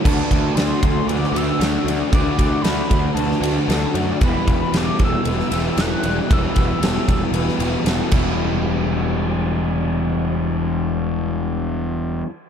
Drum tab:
CC |x---------------|----------------|----------------|--------------x-|
RD |--x-x-x-x-x-x-x-|x-x-x-x-x-x-x-x-|x-x-x-x-x-x-x-x-|x-x-x-x-x-x-x---|
SD |----o----o--o---|----o----o--o---|----o----o--o---|----o----o--o---|
BD |o-o---o---------|o-o---o---------|o-o---o---------|o-o---o-------o-|

CC |----------------|----------------|
RD |----------------|----------------|
SD |----------------|----------------|
BD |----------------|----------------|